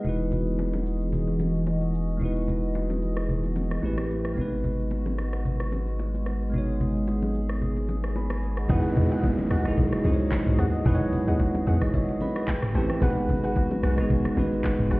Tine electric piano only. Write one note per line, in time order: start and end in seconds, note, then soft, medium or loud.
0.00 2.15 G#3 medium
0.00 2.16 D#4 medium
0.00 0.18 D#5 medium
0.05 2.17 E4 medium
0.05 2.18 F#4 medium
0.05 2.19 B4 medium
2.17 3.78 G#3 medium
2.17 3.79 D#4 medium
2.21 3.80 E4 medium
2.21 3.81 F#4 medium
2.21 3.82 B4 medium
3.82 4.36 A3 medium
3.82 4.37 C4 medium
3.82 4.37 E4 medium
3.82 4.38 G4 medium
3.82 4.38 B4 medium
4.33 6.48 G#3 medium
4.33 6.49 B3 medium
4.38 6.50 D#4 medium
4.38 6.51 F#4 medium
4.38 6.51 B4 medium
6.50 8.64 G#3 medium
6.50 8.65 B3 medium
6.50 8.66 D#4 medium
6.56 8.67 F#4 medium
6.56 8.68 C#5 medium
8.16 8.30 G#5 medium
8.16 8.30 B5 medium
8.31 8.56 G#5 medium
8.58 8.84 D#5 medium
8.58 8.83 F#5 medium
8.68 9.45 G#3 loud
8.68 9.46 D#4 loud
8.68 9.46 E4 loud
8.68 9.47 F#4 loud
8.68 9.47 B4 loud
9.64 9.97 G#3 medium
9.64 9.97 D#4 medium
9.64 9.98 E4 medium
9.64 9.98 F#4 medium
9.64 9.99 G#4 loud
10.03 10.70 G#3 medium
10.03 10.70 D#4 medium
10.03 10.71 E4 medium
10.03 10.71 F#4 medium
10.03 10.13 C5 medium
10.14 10.75 C#5 medium
10.84 11.61 G#3 loud
10.84 11.62 D#4 loud
10.84 11.62 E4 loud
10.84 11.63 F#4 loud
10.84 10.94 B4 medium
10.95 11.67 C#5 loud
11.83 11.94 D#5 medium
11.83 11.94 F#5 medium
11.95 12.20 C#5 medium
11.95 12.20 E5 medium
12.22 12.35 B4 medium
12.22 12.35 D#5 medium
12.22 12.46 B5 medium
12.36 12.62 G#4 medium
12.36 12.62 B4 medium
12.48 12.98 G5 medium
12.74 12.96 A3 medium
12.74 12.97 C4 medium
12.74 12.97 E4 medium
12.74 12.98 G4 medium
12.74 12.98 B4 medium
13.01 13.77 G#3 loud
13.01 13.78 B3 loud
13.01 13.78 D#4 loud
13.01 13.79 F#4 loud
13.01 13.79 B4 loud
13.96 14.29 G#3 medium
13.96 14.30 B3 medium
13.96 14.30 D#4 medium
13.96 14.31 F#4 medium
13.96 14.31 G#4 loud
14.35 15.00 G#3 medium
14.35 15.00 B3 medium
14.35 15.00 D#4 medium
14.35 15.00 F#4 medium
14.39 15.00 B4 medium